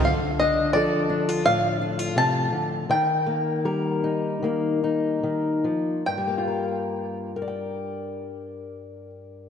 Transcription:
0.05 D3 F5
0.40 D4 D#5
0.73 F3 A4 D5
1.09 D4
1.29 F4
1.46 A2 D4 F5
1.81 D4
1.99 F4
2.16 C3 A5
2.52 D3
2.89 D#3 G5
3.27 A#3
3.65 G3 A#4
4.04 D#4
4.42 D#3 A#3
4.84 D#4
5.23 D#3
5.64 F3
6.06 G2 G5
6.18 G3
6.27 A#3
6.38 F4
6.48 A#4
7.36 A#4
7.42 D5
7.48 G5

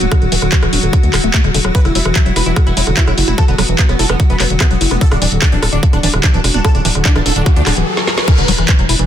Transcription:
Already playing: F#3 F#4
0.01 D1 F#3, closed hi-hat
0.12 D3, kick, cross-stick, closed hi-hat
0.22 D1 D3, closed hi-hat
0.32 D1 E3, open hi-hat
0.42 D1 D3, cross-stick, closed hi-hat
0.52 D3, kick, clap, closed hi-hat
0.63 D1 E3, cross-stick, closed hi-hat
0.73 D1 D4, open hi-hat
0.83 D1 D3, closed hi-hat
0.93 C#3, kick, cross-stick, closed hi-hat
1.03 D2 D3, closed hi-hat
1.14 D1 C#3, cross-stick, clap, open hi-hat
1.24 D1 A3, closed hi-hat
1.34 A3, kick, clap, closed hi-hat
1.44 D1 D3, cross-stick, closed hi-hat
1.54 E1 D3, open hi-hat
1.65 D1 F#3, cross-stick, closed hi-hat
1.75 E3 B4, kick, closed hi-hat
1.85 E1 D3 E4, cross-stick, closed hi-hat
1.95 E1 F#3 E4, open hi-hat
2.05 E1 E3, cross-stick
2.16 E3 E4, kick, clap, closed hi-hat
2.26 E1 F#3 E4, closed hi-hat
2.36 E1 E4 B4, cross-stick, open hi-hat
2.46 E1 E3 E4, closed hi-hat
2.56 D3, kick, cross-stick, closed hi-hat
2.67 E1 E3 E4, closed hi-hat
2.77 E1 F#3 E4, open hi-hat
2.87 E1 D3, cross-stick, closed hi-hat
2.97 E3 E4, kick, clap, closed hi-hat
3.07 E1 F#3 E4, cross-stick, closed hi-hat
3.18 F#1 E4, open hi-hat
3.28 E1 G3 E4, closed hi-hat
3.38 E3 A4, kick, cross-stick, closed hi-hat
3.48 E1 D3 B3, closed hi-hat
3.58 E1 F#3 B3, cross-stick, open hi-hat
3.69 E1 E3, closed hi-hat
3.79 E3 B3, kick, clap, closed hi-hat
3.89 E1 F#3 B3, cross-stick, closed hi-hat
3.99 E1 E4 A4, open hi-hat
4.09 E1 E3 B3, cross-stick, closed hi-hat
4.20 D3, kick, closed hi-hat
4.30 E1 E3 B3, closed hi-hat
4.40 E1 F#3 B3, cross-stick, clap, open hi-hat
4.50 E1 D3, closed hi-hat
4.60 E3 B3, kick, cross-stick, clap, closed hi-hat
4.71 E1 F#3 B3, closed hi-hat
4.81 F#1 E4, open hi-hat
4.91 E1 G3 B3, cross-stick, closed hi-hat
5.01 D3 A4, kick, closed hi-hat, riser
5.11 D1 C#3 D4, cross-stick, closed hi-hat
5.22 D1 E3 D4, open hi-hat
5.32 D1 D3, closed hi-hat
5.42 D3 D4, kick, cross-stick, clap, closed hi-hat
5.52 D1 E3 D4, closed hi-hat
5.62 D1 D4 A4, cross-stick, open hi-hat
5.73 D1 D3 D4, closed hi-hat
5.83 C#3, kick, closed hi-hat
5.93 D1 D3 D4, cross-stick, closed hi-hat
6.03 D1 E3 D4, open hi-hat
6.13 D1 C#3, cross-stick, closed hi-hat
6.24 D3 D4, kick, clap, closed hi-hat
6.34 D1 E3 D4, closed hi-hat
6.44 E1 D4, cross-stick, open hi-hat
6.54 D1 F#3 D4, closed hi-hat
6.65 D3 A4, kick, cross-stick, closed hi-hat
6.75 D1 C#3 D4, closed hi-hat
6.85 D1 E3 D4, open hi-hat
6.95 D1 D3, cross-stick, closed hi-hat
7.05 D3 D4, kick, clap, closed hi-hat
7.16 D1 E3 D4, cross-stick, closed hi-hat
7.26 D1 D4 A4, open hi-hat
7.36 D1 D3 D4, closed hi-hat
7.46 C#3, kick, cross-stick, closed hi-hat
7.56 D2 D3 D4, closed hi-hat
7.67 D1 D3 D4, cross-stick, clap, open hi-hat
7.77 D1 E3, closed hi-hat
7.97 snare
8.07 snare
8.18 snare
8.28 E3 D4, kick, closed hi-hat, crash, impact
8.38 E1 D3, closed hi-hat
8.48 E1 F#3, open hi-hat
8.58 E1 E3, cross-stick, closed hi-hat
8.69 E3, kick, clap, closed hi-hat
8.79 E1 F#3, closed hi-hat
8.89 E1 E4, open hi-hat
8.99 E1 E3, closed hi-hat

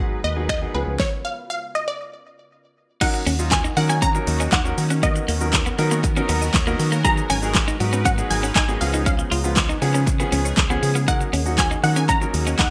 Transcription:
Already playing: G#1 G#3 D#4 F#4 A#4 B4 F#5
0.00 F#3 B3 D#4 G#4
0.24 D#2 D#5
0.36 F#3 B3 D#4 G#4
0.49 D#5, finger snap, kick
0.61 F#3 B3 D#4 G#4
0.74 C#2 C#3 F3 B3 C#4 F4 G#4 B4
0.87 C#2
1.00 C#5, kick, snare
1.25 F5
1.50 F5
1.75 D#5
1.88 D5
3.01 D#3 F#3 A#3 C#4 D#4 F#4 A#4 F#5, kick, closed hi-hat, crash, shaker
3.14 muted clean electric guitar stroke, shaker
3.27 D#2 D#3 C#4, open hi-hat, shaker
3.39 F#3 C#4 D#4 F4, shaker
3.51 G#5, kick, snare, clap, closed hi-hat, shaker
3.64 D#4, shaker
3.77 D#3 F#3 C#4 D#4 A#4 F#5, muted clean electric guitar stroke, open hi-hat, shaker
3.89 C#4 G#5, shaker
4.02 D#3 C#4 A#5, kick, clap, closed hi-hat, shaker
4.15 F#3 C#4 D#4 A#4, muted clean electric guitar stroke, shaker
4.27 D#2 D#3, open hi-hat, shaker
4.40 C#4 D#5, shaker
4.52 D#2 D#4 F#5, kick, snare, clap, closed hi-hat, shaker
4.65 F#3 C#4 D#4 A#4, muted clean electric guitar stroke, shaker
4.78 D#3, open hi-hat, shaker
4.90 C#4 F#4, shaker
5.03 D#3 F#3 B3 D#4 F#4 A#4 D#5, kick, closed hi-hat, shaker
5.16 muted clean electric guitar stroke, shaker
5.28 D#2 D#3 A#3, open hi-hat, shaker
5.41 F#3 B3 D#4 A#4, shaker
5.53 kick, snare, clap, closed hi-hat, shaker
5.66 B3, shaker
5.78 D#3 F#3 B3 D#4 A#4, muted clean electric guitar stroke, open hi-hat, shaker
5.91 A#3 B3, shaker
6.04 D#3, muted clean electric guitar stroke, kick, clap, closed hi-hat, shaker
6.16 F#3 B3 C#4 D#4 A#4, shaker
6.29 D#2 D#3 B3 A#5, open hi-hat, shaker
6.42 D#5, shaker
6.54 D#2 C#5, kick, snare, clap, closed hi-hat, shaker
6.67 F#3 A#3 B3 D#4 A#4, shaker
6.80 D#3, muted clean electric guitar stroke, open hi-hat, shaker
6.92 A#3 A#4, shaker
7.04 F#3 G#3 B3 D#4 G#4 B4 A#5, kick, closed hi-hat, shaker
7.17 muted clean electric guitar stroke, shaker
7.30 G#1 F#3 C#4 G#5, open hi-hat, shaker
7.42 F#3 B3 D#4 G#4, shaker
7.55 kick, snare, clap, closed hi-hat, shaker
7.68 D#4, shaker
7.80 G#2 F#3 B3 D#4 F#4, muted clean electric guitar stroke, open hi-hat, shaker
7.93 B3 C#4, shaker
8.05 F#3 C#4 F#5, kick, clap, closed hi-hat, shaker
8.18 F#3 B3 D#4 G#4, muted clean electric guitar stroke, shaker
8.30 G#1 F#3 G#5, open hi-hat, shaker
8.43 C#4 F#5, shaker
8.55 D#4 G#5, kick, snare, clap, closed hi-hat, shaker
8.68 F#3 B3 D#4 G#4, muted clean electric guitar stroke, shaker
8.81 C#2 C#3 F3 B3 C#4 G#4 F5, open hi-hat, shaker
8.94 D#4 F4, shaker
9.06 C#3 C#4 F5, kick, closed hi-hat, shaker
9.19 muted clean electric guitar stroke, shaker
9.31 C#2 C#3 F4, open hi-hat, shaker
9.44 F3 B3 C#4 F4, shaker
9.56 kick, snare, clap, closed hi-hat, shaker
9.69 D#4, shaker
9.81 C#3 F3 B3 C#4 G#4, muted clean electric guitar stroke, open hi-hat, shaker
9.94 B3 C#4, shaker
10.07 C#3, muted clean electric guitar stroke, kick, clap, closed hi-hat, shaker
10.19 F3 B3 C#4 G#4, shaker
10.32 C#2 C#3 C#4, open hi-hat, shaker
10.45 C#5, shaker
10.57 C#2, kick, snare, clap, closed hi-hat, shaker
10.70 F3 B3 C#4 G#4, shaker
10.83 C#3, muted clean electric guitar stroke, open hi-hat, shaker
10.95 B3 F4, shaker
11.08 D#3 F#3 A#3 C#4 D#4 F#4 A#4 F#5, kick, closed hi-hat, shaker
11.21 muted clean electric guitar stroke, shaker
11.33 D#2 D#3 C#4, open hi-hat, shaker
11.46 F#3 C#4 D#4 F#4, shaker
11.58 G#5, kick, snare, clap, closed hi-hat, shaker
11.71 D#4, shaker
11.83 D#3 F#3 C#4 D#4 F#4 F#5, muted clean electric guitar stroke, open hi-hat, shaker
11.96 C#4 G#5, shaker
12.09 D#3 C#4 A#5, kick, clap, closed hi-hat, shaker
12.21 F#3 C#4 D#4 A#4, muted clean electric guitar stroke, shaker
12.34 D#2 D#3, open hi-hat, shaker
12.47 C#4 D#5, shaker
12.59 D#2 D#4 F#5, kick, snare, clap, closed hi-hat, shaker

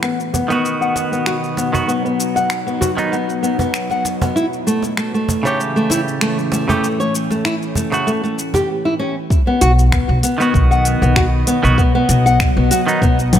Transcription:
Already playing: B2 F#3 B4
0.03 B3, finger snap, shaker
0.20 shaker
0.26 D#4
0.33 B3, cajon bass, shaker
0.48 D#3 B3 F#4, cajon slap, shaker
0.65 shaker
0.81 F#5, shaker
0.96 cajon slap, shaker
1.12 B3, shaker
1.26 F#4, finger snap, shaker
1.44 shaker
1.57 B3, cajon slap, shaker
1.64 F#5
1.73 D#3 B3 F#4, cajon bass, shaker
1.88 B3, shaker
2.05 B3, shaker
2.20 shaker
2.36 F#5, cajon slap, shaker
2.50 finger snap, shaker
2.67 B3, shaker
2.81 F#4, cajon bass, shaker
2.97 D#3 B3 D#4, cajon slap, shaker
3.12 B3, shaker
3.30 shaker
3.43 B3, shaker
3.59 B3, cajon bass, shaker
3.74 finger snap, shaker
3.90 F#5, cajon slap, shaker
4.05 cajon slap, shaker
4.22 B3, cajon bass, shaker
4.35 A2 E4, shaker
4.53 shaker
4.67 E3 A3 C#4, shaker
4.83 cajon slap, shaker
4.97 A3, finger snap, shaker
5.14 A3, shaker
5.29 cajon bass, shaker
5.43 C#3 A3 C#5, cajon slap, shaker
5.47 G4
5.60 shaker
5.76 A3, shaker
5.90 E4, cajon slap, shaker
6.08 shaker
6.21 A3, finger snap, shaker
6.39 shaker
6.47 G5
6.52 A3, cajon slap, shaker
6.68 C#3 A3 G4, cajon bass, shaker
6.84 shaker
7.00 C#5, shaker
7.15 shaker
7.30 A3, cajon slap, shaker
7.45 E4, finger snap, shaker
7.63 shaker
7.75 A3, cajon bass, shaker
7.92 C#3 A3 F#4, cajon slap, shaker
8.07 A3, shaker
8.23 A3, shaker
8.39 shaker
8.54 G4, cajon bass, shaker
8.85 E4
8.99 C#4
9.30 B2, kick, shaker
9.47 B3
9.61 B1 F#4, closed hi-hat, shaker
9.67 D#5
9.79 shaker
9.92 B3, finger snap, kick, shaker
9.96 F#3
10.09 B1
10.23 B3, closed hi-hat, shaker
10.38 D#3 B3, shaker
10.42 F#4
10.54 B1, kick, shaker
10.69 F#5, shaker
10.75 B4
10.85 closed hi-hat, shaker
11.02 B1 B3, shaker
11.16 F#4, finger snap, kick, shaker
11.47 B3, closed hi-hat, shaker
11.63 B1 D#3 B3 F#4, shaker
11.78 B3, kick, shaker
11.95 B3
12.09 B1, closed hi-hat, shaker
12.26 F#5, shaker
12.40 finger snap, kick, shaker
12.57 B1 B3
12.71 F#4, closed hi-hat, shaker
12.87 D#3 B3 D#4, shaker
13.02 B1 B3, kick, shaker
13.19 shaker
13.33 B3, closed hi-hat, low conga, shaker

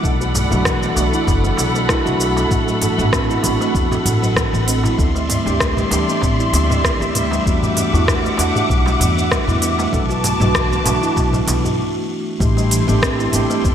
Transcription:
Already playing: F#5
0.03 B1 A3 D4 A4 D5 B5, kick, darbuka ka, cabasa
0.20 F#4, darbuka ka, cabasa
0.35 A3, darbuka tek, darbuka dum, cabasa
0.50 B1 F#3 A3 D4 F#4, darbuka ka, darbuka dum, cabasa
0.65 E3, kick, cross-stick, cabasa
0.82 B3, cabasa
0.94 B1 A3 B3 D4, darbuka tek, cabasa
0.98 F#4
1.13 E4, darbuka ka, cabasa
1.27 F#1 B3, kick, darbuka tek, cabasa
1.44 A3, cabasa
1.57 B1 A3, darbuka ka, darbuka tek, cabasa
1.75 A3, cabasa
1.88 A3 D4 E4 F#4, kick, cross-stick, cabasa
2.05 B1 A3 D4 F#4, cross-stick, cabasa
2.20 A4, cabasa
2.37 B3, darbuka tek, cabasa
2.50 A1 A3 D4 F#4, kick, mid tom, cabasa
2.67 F#3, cabasa
2.82 E3, open hi-hat, darbuka dum, cabasa
2.98 A1 A3 B3 D4 F#4, mid tom, darbuka dum, cabasa
3.12 C4, kick, cross-stick, cabasa
3.30 E4, cabasa
3.42 A1 A3 B3 D4 F#4, mid tom, open hi-hat, darbuka tek, cabasa
3.61 A3, cabasa
3.75 E2 A3, kick, cabasa
3.91 F#4, mid tom, darbuka tek, cabasa
4.05 A1 A3, open hi-hat, darbuka ka, darbuka dum, cabasa
4.22 F#3, cabasa
4.36 E3, kick, cross-stick, mid tom, cabasa
4.53 A1 B3, darbuka ka, cabasa
4.67 C4, open hi-hat, cabasa
4.83 E4, mid tom, darbuka ka, darbuka tek, cabasa
4.97 D2 G3 A3 B3 D4 A4 D5 E5 C6, kick, darbuka ka, cabasa
5.15 A3, darbuka ka, cabasa
5.29 A3, mid tom, open hi-hat, darbuka tek, darbuka dum, cabasa
5.45 D2 A3 D4 G4, darbuka ka, darbuka dum, cabasa
5.60 A3, kick, cross-stick, cabasa
5.77 G3, mid tom, cabasa
5.89 D2 E3 A3 D4, open hi-hat, darbuka tek, cabasa
5.93 G4
6.08 B3, darbuka ka, cabasa
6.21 A1 C4, kick, mid tom, darbuka tek, cabasa
6.39 E4, cabasa
6.52 D2 B3, open hi-hat, darbuka ka, darbuka tek, cabasa
6.70 A3, mid tom, cabasa
6.84 A3, kick, cross-stick, cabasa
7.00 D2 G4, cross-stick, cabasa
7.15 A3, mid tom, open hi-hat, cabasa
7.31 G3, darbuka tek, cabasa
7.45 E2 E3 A3 D4 F#4 F#5 D6, kick, cabasa
7.63 B3, mid tom, cabasa
7.77 B3, open hi-hat, darbuka dum, cabasa
7.93 E2 A3 D4 E4 F#4, darbuka dum, cabasa
8.08 B3, kick, cross-stick, mid tom, cabasa
8.24 A3, cabasa
8.36 E2 A3 D4, open hi-hat, darbuka tek, cabasa
8.40 F#5
8.55 G4, mid tom, cabasa
8.69 B1 A3, kick, cabasa
8.86 G3, darbuka tek, cabasa
9.00 E2 E3, mid tom, open hi-hat, darbuka ka, darbuka dum, cabasa
9.17 B3, cabasa
9.31 B3, kick, cross-stick, cabasa
9.47 E2 E4, mid tom, darbuka ka, cabasa
9.62 B3, open hi-hat, cabasa
9.78 A3, darbuka ka, darbuka tek, cabasa
9.92 B1 A3 D4 F#4 A4 B4 A5 D6, kick, mid tom, darbuka ka, cabasa
10.09 F#4, darbuka ka, cabasa
10.24 A3, open hi-hat, darbuka tek, darbuka dum, cabasa
10.40 B1 F#3 A3 D4 F#4, mid tom, darbuka ka, darbuka dum, cabasa
10.54 E3, kick, cross-stick, cabasa
10.71 B3, cabasa
10.84 B1 A3 B3 D4, mid tom, open hi-hat, darbuka tek, cabasa
10.88 F#4
11.02 E4, darbuka ka, cabasa
11.16 B1 B3, kick, darbuka tek, cabasa
11.33 A3, mid tom, cabasa
11.47 B1 A3, open hi-hat, darbuka ka, darbuka tek, cabasa
11.64 F#4, darbuka dum, cabasa
12.40 A1 A3 D4 E4 G4 A4 G5 C6, kick, mid tom, cabasa
12.57 G3, cabasa
12.71 E3, open hi-hat, cabasa
12.87 A1 A3 B3 D4 G4, mid tom, cabasa
13.02 C4, kick, cross-stick, cabasa
13.19 E4, cabasa
13.31 A1 A3 B3 D4 G4, mid tom, open hi-hat, cabasa
13.50 A3, cabasa
13.64 E2 A3, kick, cabasa

